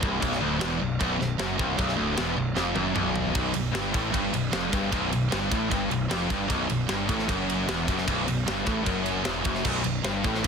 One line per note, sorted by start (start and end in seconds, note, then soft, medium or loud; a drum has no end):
0.00 0.21 C1 loud
0.00 0.19 C2 loud
0.00 kick loud
0.20 0.40 B0 medium
0.20 0.39 B1 loud
0.20 kick loud
0.20 crash medium
0.32 snare soft
0.40 0.60 D1 medium
0.40 0.58 D2 loud
0.59 0.80 E1 loud
0.59 0.79 E2 loud
0.59 snare loud
0.59 crash medium
0.79 0.99 B0 medium
0.79 0.96 B1 medium
0.99 1.19 B0 medium
0.99 1.19 B1 loud
0.99 kick loud
0.99 crash medium
1.19 1.38 B0 medium
1.19 1.35 B1 medium
1.19 snare soft
1.38 1.57 F#1 loud
1.38 1.57 F#2 loud
1.38 snare loud
1.38 crash medium
1.57 1.78 C1 medium
1.57 1.77 C2 loud
1.57 kick loud
1.77 1.97 B0 loud
1.77 1.96 B1 loud
1.77 kick loud
1.77 crash medium
1.89 snare soft
1.96 2.17 D1 loud
1.96 2.16 D2 loud
2.16 2.36 E1 loud
2.16 2.36 E2 loud
2.16 snare loud
2.16 crash medium
2.36 2.55 B0 medium
2.36 2.52 B1 medium
2.55 2.75 F1 loud
2.55 2.74 F2 loud
2.55 snare medium
2.75 2.94 F#1 loud
2.75 2.94 F#2 loud
2.75 high tom medium
2.94 3.32 B0 loud
2.94 3.34 B1 loud
2.94 mid tom loud
3.15 floor tom loud
3.35 3.53 B0 loud
3.35 3.53 B1 loud
3.35 kick loud
3.35 ride loud
3.54 3.73 B0 medium
3.54 3.70 B1 medium
3.54 ride medium
3.74 3.93 G1 loud
3.74 3.93 G2 loud
3.74 snare loud
3.74 ride loud
3.93 4.13 A1 loud
3.93 4.12 A2 loud
3.93 kick loud
3.93 ride medium
4.12 4.32 G1 loud
4.12 4.32 G2 loud
4.12 kick loud
4.12 ride loud
4.33 4.52 B0 medium
4.33 4.49 B1 medium
4.33 ride medium
4.51 4.71 F1 loud
4.51 4.70 F2 loud
4.51 snare loud
4.51 ride loud
4.71 4.91 G1 loud
4.71 4.91 G2 loud
4.71 kick loud
4.71 ride medium
4.91 5.11 B0 loud
4.91 5.10 B1 loud
4.91 kick loud
4.91 ride loud
5.11 5.31 B0 medium
5.11 5.27 B1 medium
5.11 ride medium
5.30 5.50 G1 medium
5.30 5.50 G2 loud
5.30 snare loud
5.30 ride medium
5.51 5.70 A1 loud
5.51 5.69 A2 loud
5.51 kick loud
5.51 ride medium
5.69 5.90 G1 loud
5.69 5.89 G2 loud
5.69 kick loud
5.69 ride loud
5.91 6.09 B0 medium
5.91 6.07 B1 medium
5.91 ride medium
6.09 6.29 F1 medium
6.09 6.29 F2 loud
6.09 snare loud
6.09 ride loud
6.30 6.49 G1 loud
6.30 6.47 G2 loud
6.30 kick loud
6.30 ride medium
6.48 6.68 B0 loud
6.48 6.68 B1 loud
6.48 kick loud
6.48 ride loud
6.70 6.88 B0 medium
6.70 6.85 B1 medium
6.70 ride medium
6.88 7.08 G1 loud
6.88 7.06 G2 loud
6.88 snare loud
6.88 ride loud
7.07 7.27 A1 loud
7.07 7.27 A2 loud
7.07 kick loud
7.07 ride medium
7.19 snare soft
7.28 7.66 F#1 loud
7.28 7.67 F#2 loud
7.28 kick loud
7.28 ride loud
7.50 ride medium
7.67 7.86 E1 loud
7.67 7.87 E2 loud
7.67 snare loud
7.67 ride loud
7.88 8.07 F#1 loud
7.88 8.07 F#2 loud
7.88 kick loud
7.88 ride medium
7.98 snare soft
8.08 8.26 B0 medium
8.08 8.26 B1 loud
8.08 kick loud
8.08 ride loud
8.27 8.46 B0 medium
8.27 8.43 B1 medium
8.27 ride medium
8.46 8.66 G1 loud
8.46 8.66 G2 loud
8.46 snare loud
8.46 ride medium
8.66 8.85 A1 medium
8.66 8.85 A2 medium
8.66 kick loud
8.66 ride medium
8.85 9.23 F#1 medium
8.85 9.23 F#2 loud
8.85 kick loud
8.85 ride loud
9.06 ride medium
9.24 9.44 E1 loud
9.24 9.43 E2 loud
9.24 snare loud
9.24 ride loud
9.44 9.64 F#1 loud
9.44 9.64 F#2 loud
9.44 kick loud
9.44 ride medium
9.55 snare soft
9.65 9.84 B0 loud
9.65 9.83 B1 loud
9.65 kick loud
9.65 crash loud
9.84 10.03 B0 medium
9.84 10.00 B1 medium
9.84 ride medium
10.03 10.23 G1 loud
10.03 10.23 G2 loud
10.03 snare loud
10.03 ride loud
10.23 10.43 A1 loud
10.23 10.43 A2 loud
10.23 kick loud
10.23 ride medium
10.35 snare soft
10.43 10.47 G2 loud